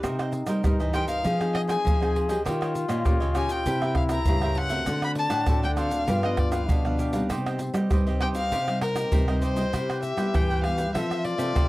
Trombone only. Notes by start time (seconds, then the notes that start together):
0.04 D#4
1.25 G#4
2.45 F4
3.67 E4
4.87 D4
6.09 F4
6.69 D4
7.30 C4
9.73 G4
10.94 F4